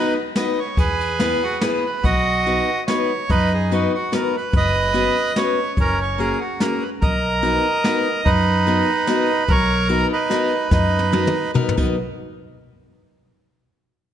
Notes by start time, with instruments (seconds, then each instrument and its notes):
Already playing: steel-string acoustic guitar B3 D#4 F#4 B4, accordion D#4 B4
0.36 steel-string acoustic guitar B3 D#4 F#4 B4, accordion D#5, snare, ride
0.59 accordion C#5
0.77 upright bass E2, accordion G#4 B4, kick, ride
1.01 ride
1.20 steel-string acoustic guitar B3 E4 G#4 B4, snare, ride
1.43 accordion F#4
1.60 steel-string acoustic guitar B3 E4 G#4 B4, accordion B4, snare, ride
1.86 accordion B4
2.03 upright bass B1, accordion F#4 D#5, kick, closed hi-hat
2.46 steel-string acoustic guitar B3 D#4 F#4 B4, closed hi-hat
2.87 steel-string acoustic guitar B3 D#4 F#4 B4, accordion C#5, snare, closed hi-hat
3.29 upright bass F#2, accordion D#4 B4, kick, closed hi-hat
3.54 accordion G#4
3.71 steel-string acoustic guitar B3 D#4 F#4 B4, accordion F#4, closed hi-hat
3.94 accordion F#4
4.12 steel-string acoustic guitar B3 D#4 F#4 B4, accordion A#4, snare, closed hi-hat
4.36 accordion B4
4.53 upright bass F#1, accordion B4 D#5, kick, closed hi-hat
4.94 steel-string acoustic guitar B3 C#4 F#4 B4, closed hi-hat
5.36 steel-string acoustic guitar B3 C#4 F#4 B4, accordion C#5, snare, closed hi-hat
5.77 upright bass F#1, accordion C#4 A#4, kick, closed hi-hat
6.01 accordion C#5
6.18 steel-string acoustic guitar A#3 C#4 F#4 G#4, accordion A#4, closed hi-hat
6.40 accordion F#4
6.60 steel-string acoustic guitar A#3 C#4 F#4 G#4, accordion A#4, snare, closed hi-hat
6.81 accordion B4
7.01 upright bass B1, accordion A#4 D#5, kick, closed hi-hat
7.42 steel-string acoustic guitar B3 D#4 F#4 A#4, closed hi-hat
7.84 steel-string acoustic guitar B3 D#4 F#4 A#4, snare, closed hi-hat
8.24 upright bass F#2, accordion D#4 B4, kick, closed hi-hat
8.67 steel-string acoustic guitar B3 D#4 F#4 A#4, closed hi-hat
9.07 steel-string acoustic guitar B3 D#4 F#4 A#4, snare, closed hi-hat
9.48 upright bass B1, accordion A#4 C#5, kick, closed hi-hat
9.88 steel-string acoustic guitar B3 D#4 F#4 A#4, closed hi-hat
10.13 accordion D#4 B4
10.30 steel-string acoustic guitar B3 D#4 F#4 A#4, snare, closed hi-hat
10.71 upright bass F#2, accordion D#4 B4, kick, snare
10.99 high tom
11.12 steel-string acoustic guitar B3 D#4 F#4 A#4, high tom
11.27 mid tom
11.54 steel-string acoustic guitar B3 D#4 F#4 A#4, mid tom
11.69 floor tom
11.77 upright bass B1, steel-string acoustic guitar B3 D#4 F#4 A#4, kick, crash